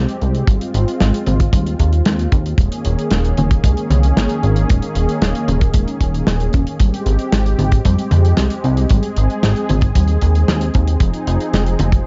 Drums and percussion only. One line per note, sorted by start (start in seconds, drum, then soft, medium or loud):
0.09 closed hi-hat medium
0.22 closed hi-hat soft
0.35 closed hi-hat soft
0.47 kick loud
0.47 closed hi-hat medium
0.61 closed hi-hat medium
0.74 closed hi-hat medium
0.88 closed hi-hat medium
1.00 snare loud
1.00 closed hi-hat medium
1.14 closed hi-hat medium
1.26 closed hi-hat medium
1.26 mid tom medium
1.40 kick medium
1.40 closed hi-hat medium
1.53 kick loud
1.53 closed hi-hat medium
1.66 closed hi-hat medium
1.79 kick medium
1.79 closed hi-hat medium
1.93 closed hi-hat medium
2.05 snare loud
2.05 closed hi-hat loud
2.19 closed hi-hat medium
2.32 kick loud
2.32 closed hi-hat medium
2.46 closed hi-hat medium
2.58 kick loud
2.58 closed hi-hat medium
2.72 closed hi-hat medium
2.85 closed hi-hat medium
2.99 closed hi-hat medium
3.11 snare loud
3.11 closed hi-hat medium
3.24 closed hi-hat medium
3.37 closed hi-hat medium
3.37 mid tom medium
3.51 kick medium
3.51 closed hi-hat medium
3.64 kick loud
3.64 closed hi-hat loud
3.77 closed hi-hat soft
3.90 closed hi-hat medium
3.90 mid tom loud
4.03 closed hi-hat medium
4.17 snare loud
4.17 closed hi-hat loud
4.29 closed hi-hat medium
4.43 closed hi-hat soft
4.56 closed hi-hat medium
4.70 kick loud
4.70 closed hi-hat medium
4.82 closed hi-hat medium
4.95 closed hi-hat medium
5.09 closed hi-hat soft
5.22 snare loud
5.22 closed hi-hat loud
5.35 closed hi-hat medium
5.48 closed hi-hat medium
5.48 mid tom medium
5.61 kick loud
5.61 closed hi-hat medium
5.74 kick loud
5.74 closed hi-hat medium
5.88 closed hi-hat medium
6.01 kick medium
6.01 closed hi-hat medium
6.14 closed hi-hat medium
6.27 snare loud
6.27 closed hi-hat loud
6.40 closed hi-hat soft
6.53 kick medium
6.53 closed hi-hat medium
6.67 closed hi-hat medium
6.80 kick medium
6.80 closed hi-hat medium
6.94 closed hi-hat medium
7.06 closed hi-hat medium
7.19 closed hi-hat soft
7.32 snare loud
7.32 closed hi-hat loud
7.46 closed hi-hat soft
7.59 closed hi-hat medium
7.59 mid tom medium
7.72 kick loud
7.72 closed hi-hat medium
7.85 kick loud
7.85 closed hi-hat medium
7.99 closed hi-hat soft
8.11 closed hi-hat medium
8.11 mid tom loud
8.25 closed hi-hat medium
8.37 snare loud
8.37 closed hi-hat loud
8.50 closed hi-hat medium
8.64 closed hi-hat soft
8.77 closed hi-hat soft
8.89 kick loud
8.89 closed hi-hat medium
9.03 closed hi-hat soft
9.16 closed hi-hat medium
9.30 closed hi-hat soft
9.43 snare loud
9.43 closed hi-hat loud
9.56 closed hi-hat soft
9.69 closed hi-hat medium
9.69 mid tom loud
9.81 kick loud
9.81 closed hi-hat medium
9.95 kick loud
9.95 closed hi-hat medium
10.08 closed hi-hat soft
10.21 kick medium
10.21 closed hi-hat medium
10.35 closed hi-hat soft
10.48 snare loud
10.48 closed hi-hat medium
10.61 closed hi-hat medium
10.74 kick loud
10.74 closed hi-hat medium
10.87 closed hi-hat medium
11.00 kick loud
11.00 closed hi-hat medium
11.14 closed hi-hat soft
11.27 closed hi-hat medium
11.40 closed hi-hat medium
11.54 snare loud
11.54 closed hi-hat medium
11.66 closed hi-hat medium
11.79 closed hi-hat medium
11.79 mid tom loud
11.92 kick loud
11.92 closed hi-hat medium